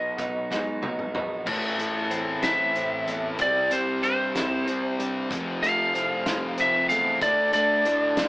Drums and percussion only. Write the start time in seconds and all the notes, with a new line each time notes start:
0.18 kick, closed hi-hat
0.51 snare
0.83 high tom
0.99 mid tom
1.15 mid tom
1.47 kick, crash
1.79 closed hi-hat
2.11 closed hi-hat
2.43 snare, closed hi-hat
2.76 closed hi-hat
3.08 closed hi-hat
3.39 kick, closed hi-hat
3.71 closed hi-hat
4.03 closed hi-hat
4.35 snare, closed hi-hat
4.68 closed hi-hat
5.00 closed hi-hat
5.31 kick, closed hi-hat
5.63 closed hi-hat
5.95 closed hi-hat
6.26 snare, closed hi-hat
6.58 closed hi-hat
6.90 closed hi-hat
7.21 kick, closed hi-hat
7.53 closed hi-hat
7.85 closed hi-hat
8.17 snare, closed hi-hat